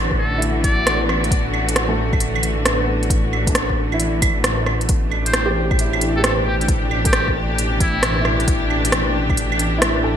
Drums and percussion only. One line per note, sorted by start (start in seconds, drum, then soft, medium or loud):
0.11 kick medium
0.42 closed hi-hat medium
0.64 kick loud
0.64 closed hi-hat medium
0.87 cross-stick loud
0.87 closed hi-hat medium
1.09 cross-stick medium
1.09 claves soft
1.24 closed hi-hat soft
1.31 kick loud
1.31 closed hi-hat medium
1.54 claves soft
1.69 closed hi-hat medium
1.76 cross-stick loud
1.76 closed hi-hat medium
2.13 kick loud
2.13 claves soft
2.20 closed hi-hat medium
2.36 claves medium
2.43 closed hi-hat medium
2.66 cross-stick loud
2.66 closed hi-hat medium
3.03 closed hi-hat soft
3.10 kick loud
3.10 closed hi-hat medium
3.33 claves soft
3.47 kick loud
3.47 closed hi-hat medium
3.55 cross-stick loud
3.55 closed hi-hat medium
3.70 kick medium
3.92 claves soft
4.00 closed hi-hat medium
4.22 kick loud
4.22 closed hi-hat medium
4.22 claves medium
4.44 cross-stick loud
4.44 closed hi-hat medium
4.66 cross-stick medium
4.66 claves soft
4.81 closed hi-hat soft
4.89 kick loud
4.89 closed hi-hat medium
5.11 claves soft
5.26 closed hi-hat medium
5.34 cross-stick loud
5.34 closed hi-hat medium
5.71 kick loud
5.71 claves soft
5.79 closed hi-hat medium
5.93 claves medium
6.01 closed hi-hat medium
6.24 cross-stick loud
6.24 closed hi-hat medium
6.61 closed hi-hat soft
6.68 kick loud
6.68 closed hi-hat medium
6.91 claves soft
7.05 kick loud
7.05 closed hi-hat medium
7.13 cross-stick loud
7.13 closed hi-hat medium
7.28 kick medium
7.58 closed hi-hat medium
7.80 kick loud
7.80 closed hi-hat medium
8.03 cross-stick loud
8.03 closed hi-hat medium
8.25 cross-stick medium
8.25 claves soft
8.40 closed hi-hat soft
8.48 kick loud
8.48 closed hi-hat medium
8.70 claves soft
8.85 closed hi-hat medium
8.92 cross-stick loud
8.92 closed hi-hat medium
9.29 kick loud
9.29 claves soft
9.37 closed hi-hat medium
9.52 claves medium
9.59 closed hi-hat medium
9.82 cross-stick loud
9.82 closed hi-hat medium